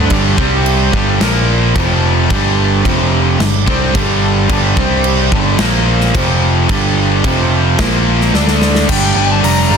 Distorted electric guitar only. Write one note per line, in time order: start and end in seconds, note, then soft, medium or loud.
0.11 0.37 G2 medium
0.11 0.38 D3 loud
0.11 0.38 G3 loud
0.38 0.92 C3 medium
0.38 0.93 G3 medium
0.38 0.93 C4 loud
0.92 1.19 G2 loud
0.92 1.19 D3 loud
0.92 1.20 G3 loud
1.20 1.74 A#2 medium
1.20 1.74 F3 medium
1.20 1.75 A#3 medium
1.74 2.29 F2 loud
1.74 2.29 C3 loud
1.74 2.30 F3 loud
2.29 2.84 G2 loud
2.29 2.85 D3 loud
2.29 2.86 G3 loud
2.84 3.39 F2 loud
2.84 3.39 C3 loud
2.84 3.39 F3 medium
3.39 3.61 G2 medium
3.39 3.61 D3 medium
3.67 3.94 C3 medium
3.67 3.94 G3 loud
3.67 3.94 C4 loud
3.94 4.48 G2 loud
3.94 4.48 D3 loud
3.94 4.49 G3 loud
4.49 4.76 G2 medium
4.49 4.76 D3 loud
4.49 4.75 G3 loud
4.76 5.31 C3 medium
4.76 5.31 G3 loud
4.76 5.31 C4 loud
5.32 5.59 G2 loud
5.32 5.58 D3 loud
5.32 5.59 G3 loud
5.59 6.13 A#2 medium
5.59 6.14 F3 medium
5.59 6.14 A#3 medium
6.14 6.68 F2 loud
6.14 6.69 C3 loud
6.14 6.69 F3 loud
6.69 7.23 G2 medium
6.69 7.23 D3 medium
6.69 7.24 G3 loud
7.24 7.78 F2 medium
7.24 7.78 C3 medium
7.24 7.78 F3 loud
7.79 8.33 A#2 medium
7.79 8.33 F3 medium
7.79 8.33 A#3 medium
8.33 8.87 D3 medium
8.33 8.88 A3 loud
8.33 8.88 D4 loud
8.89 9.77 G2 medium
8.89 9.77 D3 medium
8.89 9.77 G3 medium